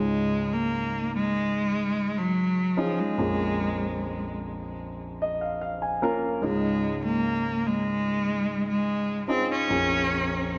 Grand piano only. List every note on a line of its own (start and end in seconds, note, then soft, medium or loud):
0.00 3.14 C#2 soft
0.00 3.14 G#2 soft
0.00 1.46 C#4 soft
0.00 1.46 D#4 soft
0.00 1.47 F4 soft
0.00 1.47 G#4 soft
2.77 3.16 C#4 medium
2.77 3.16 D#4 medium
2.77 3.16 F4 medium
2.77 3.17 G#4 medium
3.18 6.39 A#1 soft
3.18 6.38 F2 soft
3.18 4.73 A#3 medium
3.18 4.73 C#4 soft
3.18 4.73 F4 soft
3.18 4.73 G#4 medium
5.22 5.40 D#5 medium
5.41 5.60 F5 soft
5.61 5.80 F5 medium
5.82 6.39 G#5 soft
6.02 6.41 A#3 medium
6.02 6.40 C#4 medium
6.02 6.41 F4 medium
6.02 6.41 A#4 medium
6.42 9.65 C#2 soft
6.42 9.65 G#2 soft
6.42 7.97 C#4 medium
6.42 7.97 D#4 soft
6.42 7.97 F4 soft
6.42 7.97 G#4 medium
9.28 9.67 C#4 medium
9.28 9.67 D#4 medium
9.28 9.67 F4 medium
9.28 9.68 G#4 medium
9.69 10.58 A#1 soft
9.69 10.58 F2 soft
9.69 10.58 A#3 soft
9.69 10.58 C#4 soft
9.69 10.58 F4 soft
9.69 10.58 G#4 medium